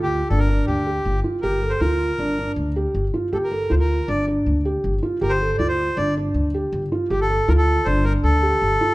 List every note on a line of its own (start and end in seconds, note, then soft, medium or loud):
0.00 0.21 D2 medium
0.00 0.20 F4 medium
0.00 0.28 G4 medium
0.29 0.59 G1 medium
0.29 0.44 D4 medium
0.29 0.39 A4 medium
0.38 0.65 A#4 medium
0.49 0.76 D4 medium
0.67 0.97 D2 medium
0.67 1.20 G4 medium
0.86 1.14 G4 medium
1.05 1.20 G1 medium
1.24 1.38 F4 medium
1.42 1.72 G1 medium
1.42 1.57 G4 medium
1.42 1.72 A#4 medium
1.62 1.76 A4 medium
1.70 1.81 C5 medium
1.80 2.10 D2 medium
1.80 2.09 F4 medium
1.80 2.52 A#4 medium
2.18 2.48 G1 medium
2.18 2.33 D4 medium
2.39 2.66 D4 medium
2.56 2.85 D2 medium
2.76 3.03 G4 medium
2.95 3.09 G1 medium
3.14 3.27 F4 medium
3.33 3.62 G1 medium
3.33 3.46 G4 medium
3.33 3.37 A4 medium
3.44 3.72 A#4 medium
3.52 3.65 A4 medium
3.70 4.00 D2 medium
3.70 3.98 F4 medium
3.70 3.75 C5 medium
3.79 4.09 A#4 medium
4.08 4.37 G1 medium
4.08 4.22 D4 medium
4.08 4.26 D5 medium
4.27 4.55 D4 medium
4.46 4.75 D2 medium
4.65 4.93 G4 medium
4.84 4.98 G1 medium
5.03 5.16 F4 medium
5.21 5.50 G1 medium
5.21 5.35 G4 medium
5.21 5.32 A#4 medium
5.29 5.56 C5 medium
5.58 5.88 D2 medium
5.58 5.87 F4 medium
5.58 5.67 D5 medium
5.68 5.98 C5 medium
5.97 6.26 G1 medium
5.97 6.11 D4 medium
5.97 6.14 D5 medium
6.17 6.44 D4 medium
6.34 6.63 D2 medium
6.54 6.82 G4 medium
6.72 6.87 G1 medium
6.92 7.05 F4 medium
7.10 7.39 G1 medium
7.10 7.20 G4 medium
7.10 7.24 G4 medium
7.21 7.49 A4 medium
7.30 7.43 A4 medium
7.48 7.77 D2 medium
7.48 7.76 F4 medium
7.48 7.52 A#4 medium
7.58 7.87 A4 medium
7.85 8.15 G1 medium
7.85 8.00 D4 medium
7.85 8.05 C5 medium
8.04 8.13 A#4 medium
8.23 8.53 D2 medium
8.23 8.94 A4 medium
8.42 8.70 G4 medium
8.62 8.76 G1 medium
8.81 8.94 F4 medium